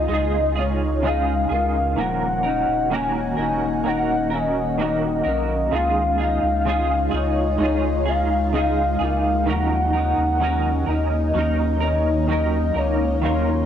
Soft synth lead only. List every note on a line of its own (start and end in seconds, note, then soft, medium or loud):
0.00 0.61 D#5 loud
0.59 1.08 C#5 loud
1.07 2.01 F5 loud
2.00 2.95 F#5 loud
2.94 3.86 G#5 loud
3.87 4.35 F#5 loud
4.34 4.80 D#5 loud
4.80 5.76 D#5 loud
5.74 7.17 F5 loud
7.16 8.11 C#5 loud
8.09 8.55 F5 loud
8.56 9.51 F5 loud
9.49 10.91 F#5 loud
10.90 11.83 D#5 loud
11.84 12.27 D#5 medium
12.31 12.79 D#5 loud
12.78 13.66 C#5 medium